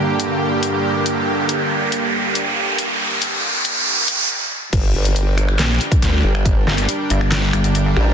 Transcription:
0.00 4.26 G2 medium
0.00 4.26 D3 medium
0.00 4.26 A#3 medium
0.00 4.26 G4 medium
0.00 riser medium
0.20 closed hi-hat medium
0.63 closed hi-hat medium
1.06 closed hi-hat medium
1.49 closed hi-hat medium
1.92 closed hi-hat medium
2.35 closed hi-hat medium
2.78 closed hi-hat medium
3.22 closed hi-hat medium
3.65 closed hi-hat medium
4.08 closed hi-hat medium
4.73 4.93 G1 loud
4.73 8.14 G3 medium
4.73 8.14 D4 medium
4.73 8.14 A#4 medium
4.73 8.14 G5 medium
4.73 kick loud
4.73 closed hi-hat medium
4.73 crash loud
4.94 5.57 G1 loud
5.05 closed hi-hat medium
5.16 closed hi-hat medium
5.38 finger snap medium
5.38 closed hi-hat medium
5.49 finger snap soft
5.59 5.79 A#1 loud
5.59 snare loud
5.59 clap medium
5.59 closed hi-hat medium
5.81 closed hi-hat medium
5.92 kick loud
5.92 closed hi-hat medium
6.02 6.22 D2 medium
6.02 snare medium
6.02 closed hi-hat medium
6.24 6.65 G1 medium
6.35 finger snap medium
6.45 kick loud
6.45 closed hi-hat medium
6.67 6.87 G1 loud
6.67 snare medium
6.78 closed hi-hat medium
6.89 closed hi-hat medium
7.10 7.52 G1 loud
7.10 closed hi-hat medium
7.21 finger snap soft
7.32 snare loud
7.32 clap medium
7.32 closed hi-hat medium
7.53 7.95 G1 medium
7.53 finger snap medium
7.53 closed hi-hat medium
7.64 closed hi-hat medium
7.75 closed hi-hat medium
7.97 8.14 A1 loud
7.97 finger snap soft

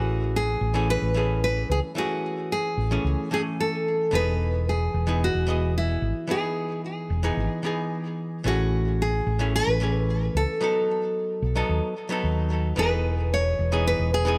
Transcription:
0.00 0.55 A1 medium
0.00 0.71 E3 medium
0.00 0.72 A3 medium
0.00 0.72 C#4 medium
0.00 0.37 F#4 loud
0.00 0.73 G#4 medium
0.36 0.86 G#4 medium
0.61 0.95 A1 medium
0.74 1.12 E3 medium
0.74 1.12 A3 medium
0.74 1.12 C#4 medium
0.74 1.13 G#4 medium
0.90 1.40 B4 loud
1.02 1.63 A1 medium
1.14 1.93 E3 medium
1.14 1.93 A3 medium
1.14 1.94 C#4 medium
1.14 1.94 G#4 medium
1.44 1.71 B4 loud
1.70 1.79 C#2 medium
1.70 1.79 G#4 medium
1.95 2.87 E3 medium
1.95 2.88 A3 medium
1.95 2.88 C#4 medium
1.95 2.53 F#4 medium
1.95 2.89 G#4 medium
2.52 3.29 G#4 medium
2.77 2.96 A1 medium
2.91 3.28 E3 medium
2.91 3.29 A3 medium
2.91 3.29 C#4 medium
2.91 3.29 G#4 medium
3.04 3.14 C#2 medium
3.31 4.09 E3 medium
3.31 4.10 A3 medium
3.31 4.10 C#4 medium
3.31 3.41 G#4 medium
3.31 4.11 G#5 medium
3.60 4.10 A4 medium
4.11 4.87 E1 medium
4.11 5.03 E3 medium
4.11 5.04 B3 medium
4.11 5.05 D#4 medium
4.11 5.05 G#4 medium
4.15 4.69 B4 loud
4.69 5.24 G#4 medium
4.94 5.28 E1 loud
5.07 5.44 E3 medium
5.07 5.45 B3 medium
5.07 5.45 D#4 medium
5.07 5.45 G#4 medium
5.24 5.77 F#4 medium
5.35 5.96 E1 medium
5.47 6.25 E3 medium
5.47 6.26 B3 medium
5.47 6.27 G#4 medium
5.47 6.26 D#5 medium
5.78 6.32 E4 medium
6.02 6.11 G#1 medium
6.27 7.20 E3 medium
6.27 7.20 B3 medium
6.27 7.21 D#4 medium
6.27 7.21 G#4 loud
6.27 6.81 G#4 medium
7.10 7.29 E1 medium
7.23 7.61 E3 medium
7.23 7.61 B3 medium
7.23 7.61 D#4 medium
7.23 7.62 G#4 medium
7.37 7.46 G#1 medium
7.63 8.41 E3 medium
7.63 8.42 B3 medium
7.63 8.43 D#4 medium
7.63 8.43 G#4 medium
8.44 9.20 A1 loud
8.44 9.36 E3 medium
8.44 9.37 A3 medium
8.44 9.37 C#4 medium
8.44 9.02 F#4 loud
8.44 9.38 G#4 medium
9.02 9.55 G#4 medium
9.27 9.60 A1 medium
9.39 9.77 E3 medium
9.39 9.77 A3 medium
9.39 9.78 C#4 medium
9.39 9.78 G#4 medium
9.56 10.32 B4 loud
9.67 10.28 A1 medium
9.80 10.58 E3 medium
9.80 10.59 A3 medium
9.80 10.59 C#4 medium
9.80 10.60 G#4 medium
10.35 10.44 C#2 medium
10.35 12.21 A4 medium
10.61 11.52 F#3 medium
10.61 11.53 B3 medium
10.61 11.53 D#4 medium
10.61 11.54 A4 loud
11.42 11.61 B1 medium
11.55 11.93 F#3 medium
11.55 11.93 B3 medium
11.55 11.94 D#4 medium
11.55 11.94 A4 loud
11.69 11.79 D#2 loud
12.09 12.74 F#3 medium
12.09 12.75 B3 medium
12.09 12.75 D#4 medium
12.09 12.76 A4 medium
12.24 12.71 D#2 medium
12.76 13.52 E1 loud
12.76 13.68 E3 medium
12.76 13.69 B3 medium
12.76 13.69 D#4 medium
12.76 13.70 G#4 loud
12.76 13.33 B4 loud
13.34 13.83 C#5 loud
13.59 13.93 E1 medium
13.72 14.09 E3 medium
13.72 14.10 B3 medium
13.72 14.10 D#4 medium
13.72 14.10 G#4 loud
13.87 14.12 B4 loud
13.99 14.38 E1 medium
14.14 14.38 G#4 medium
14.25 14.38 E3 medium
14.25 14.38 B3 medium
14.25 14.38 D#4 medium
14.25 14.38 G#4 loud

